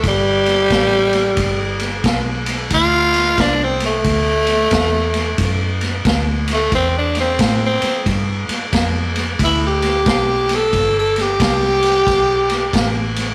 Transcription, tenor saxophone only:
0.08 2.02 G3 loud
2.74 3.42 F4 loud
3.41 3.65 D4 medium
3.64 3.84 C4 medium
3.86 5.81 A3 loud
6.53 6.73 A3 medium
6.75 6.95 C4 medium
6.98 7.18 D4 medium
7.20 7.62 C4 medium
7.66 8.07 C4 medium
9.44 9.63 E4 medium
9.67 10.57 G4 medium
10.55 10.96 A4 medium
10.98 11.22 A4 medium
11.21 13.16 G4 loud

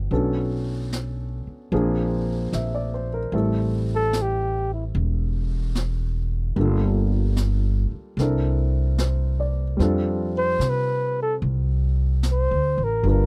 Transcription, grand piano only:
0.00 0.11 C4 soft
0.00 0.10 D4 soft
0.00 0.12 E4 soft
0.00 0.12 G4 soft
0.11 1.72 F#3 soft
0.11 1.72 B3 soft
0.11 1.73 C#4 soft
0.11 1.73 D4 soft
0.11 1.73 A4 soft
1.72 3.34 F3 medium
1.72 3.34 A#3 soft
1.72 3.32 C4 soft
1.72 3.34 D4 soft
1.72 3.35 G#4 medium
2.53 2.92 E5 soft
2.75 3.09 D5 soft
2.94 3.18 C5 soft
3.14 3.41 A#4 soft
3.33 6.54 G3 soft
3.33 6.56 A3 soft
3.33 6.57 C4 soft
3.33 6.57 E4 soft
3.33 6.57 A4 soft
6.56 8.18 G3 soft
6.56 8.18 A#3 soft
6.56 8.18 D4 soft
6.60 8.20 F4 soft
6.60 8.18 A4 soft
8.19 9.78 C4 soft
8.19 9.78 D4 soft
8.19 9.81 E4 soft
8.19 9.81 A4 soft
8.19 9.81 A#4 soft
9.00 9.63 C5 soft
9.40 9.96 D5 soft
9.77 13.01 G3 soft
9.77 13.04 C4 soft
9.77 13.04 D4 soft
9.77 13.04 F4 soft
9.82 13.05 A4 medium
13.03 13.26 G3 soft
13.03 13.26 B3 soft
13.03 13.26 D4 soft
13.03 13.26 F4 soft
13.08 13.26 B4 soft

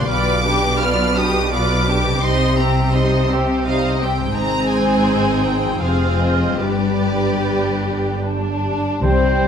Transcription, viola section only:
0.08 0.42 B3 soft
0.08 0.42 F4 soft
0.44 0.80 D4 soft
0.44 0.80 G4 soft
0.79 1.15 B3 medium
0.79 1.15 F4 soft
1.15 1.51 D4 soft
1.15 1.51 G4 soft
1.51 1.84 B3 soft
1.51 1.84 F4 soft
1.87 2.22 D4 soft
1.87 2.22 G4 soft
2.22 2.55 G3 soft
2.22 2.55 D#4 medium
2.57 2.92 C4 soft
2.94 3.29 G3 soft
2.94 3.29 D#4 soft
3.29 3.65 C4 soft
3.66 3.98 G3 soft
3.66 3.98 D#4 soft
4.01 4.35 C4 soft
4.36 5.78 C4 medium
4.36 5.78 D#4 medium
5.82 6.59 C4 soft
5.82 6.61 F4 soft
6.61 8.83 G3 soft
6.61 8.82 D4 soft

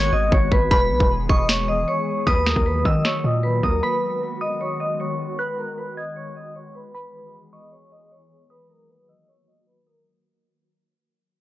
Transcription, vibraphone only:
0.00 0.10 C#5 medium
0.00 0.11 C#6 medium
0.13 0.30 D#5 medium
0.13 0.30 D#6 medium
0.32 0.49 C#5 medium
0.32 0.50 C#6 medium
0.52 0.69 B4 medium
0.52 0.69 B5 medium
0.71 1.08 B4 loud
0.71 1.08 B5 medium
1.29 1.47 D#5 medium
1.29 1.47 D#6 medium
1.49 1.66 C#5 medium
1.49 1.67 C#6 medium
1.68 1.86 D#5 medium
1.68 1.86 D#6 medium
1.88 2.25 C#5 medium
1.88 2.25 C#6 medium
2.27 2.44 B4 medium
2.27 2.45 B5 medium
2.46 2.64 A#4 medium
2.46 2.64 A#5 medium
2.66 2.83 B4 medium
2.66 2.84 B5 medium
2.85 3.03 D#5 medium
2.85 3.03 D#6 medium
3.05 3.22 C#5 medium
3.05 3.22 C#6 medium
3.24 3.42 D#5 medium
3.24 3.42 D#6 medium
3.43 3.61 B4 medium
3.43 3.61 B5 medium
3.63 3.81 A#4 medium
3.63 3.81 A#5 medium
3.83 4.19 B4 loud
3.83 4.20 B5 medium
4.41 4.59 D#5 medium
4.41 4.59 D#6 medium
4.61 4.78 C#5 medium
4.61 4.79 C#6 medium
4.80 4.98 D#5 medium
4.80 4.98 D#6 medium
5.00 5.36 C#5 medium
5.00 5.37 C#6 medium
5.39 5.56 B4 medium
5.39 5.56 B5 medium
5.58 5.76 A#4 medium
5.58 5.76 A#5 medium
5.78 5.95 B4 medium
5.78 5.95 B5 medium
5.97 6.14 D#5 medium
5.97 6.15 D#6 medium
6.16 6.34 C#5 medium
6.16 6.34 C#6 medium
6.36 6.53 D#5 medium
6.36 6.54 D#6 medium
6.55 6.73 C#5 medium
6.55 6.73 C#6 medium
6.75 6.92 B4 medium
6.75 6.93 B5 medium
6.95 7.31 B4 loud
6.95 7.32 B5 medium
7.53 7.70 D#5 medium
7.53 7.71 D#6 medium
7.72 7.90 C#5 medium
7.72 7.90 C#6 medium
7.92 8.09 D#5 medium
7.92 8.10 D#6 medium
8.11 8.48 C#5 medium
8.11 8.48 C#6 medium
8.50 8.68 B4 medium
8.50 8.68 B5 medium
8.69 8.87 A#4 medium
8.69 8.87 A#5 medium
9.09 9.26 D#5 medium
9.09 9.26 D#6 medium
9.28 9.45 C#5 medium
9.28 9.46 C#6 medium
9.48 9.65 D#5 medium
9.48 9.65 D#6 medium
9.67 9.84 B4 medium
9.67 9.85 B5 medium
9.87 10.04 A#4 medium
9.87 10.04 A#5 medium

